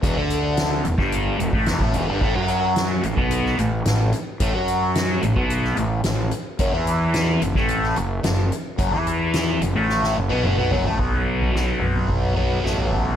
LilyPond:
<<
  \new Staff \with { instrumentName = "Distorted electric guitar" } { \clef bass \time 4/4 \key fis \dorian \tempo 4 = 110 <e, e>16 <d d'>4~ <d d'>16 e,16 <g, g>8. e,16 <a, a>16 <e, e>16 <a, a>16 <e, e>16 <g, g>16 | <a, a>16 <fis fis'>4~ <fis fis'>16 a,16 <b, b>8. a,8 a,8 r8 | <a, a>16 <fis fis'>4~ <fis fis'>16 a,16 <b, b>8. a,8 a,8 r8 | <fis, fis>16 <e e'>4~ <e e'>16 fis,16 <a, a>8. fis,8 fis,8 r8 |
<fis, fis>16 <e e'>4~ <e e'>16 fis,16 <a, a>8. fis,16 <b, b>16 <fis, fis>16 <b, b>16 <fis, fis>16 <a, a>16 | <b, fis b>2~ <b, fis b>8 <b, fis b>8 <b, fis b>4 | }
  \new Staff \with { instrumentName = "Fingered electric bass" } { \clef bass \time 4/4 \key fis \dorian e,,16 d,4~ d,16 e,,16 g,,8. e,,16 a,,16 e,,16 a,,16 e,,16 g,,16 | a,,16 fis,4~ fis,16 a,,16 b,,8. a,,8 a,,8 r8 | a,,16 fis,4~ fis,16 a,,16 b,,8. a,,8 a,,8 r8 | fis,,16 e,4~ e,16 fis,,16 a,,8. fis,,8 fis,,8 r8 |
fis,,16 e,4~ e,16 fis,,16 a,,8. fis,,16 b,,16 fis,,16 b,,16 fis,,16 a,,16 | b,,4 b,,8 b,,8 b,,8 b,,8 a,,4 | }
  \new DrumStaff \with { instrumentName = "Drums" } \drummode { \time 4/4 <hh bd>8 hh8 <hh sn>8 hh16 <bd sn>16 hh8 hh16 bd16 <hh sn>16 bd16 hh8 | <cymc bd>8 hh8 <hh sn>8 hh16 bd16 hh16 sn16 hh8 <hh sn>8 hh8 | <hh bd>8 hh8 <hh sn>8 hh16 bd16 hh16 sn16 hh8 <hh sn>8 hh8 | <hh bd>8 hh8 <hh sn>8 hh16 <bd sn>16 hh16 sn16 hh8 <hh sn>8 hh8 |
<hh bd>8 hh8 <hh sn>8 hh8 sn16 sn8 tommh16 toml8 tomfh16 tomfh16 | <bd tomfh>8. tomfh16 sn8 toml16 tomfh16 <bd toml>8 tomfh8 sn16 tomfh16 bd8 | }
>>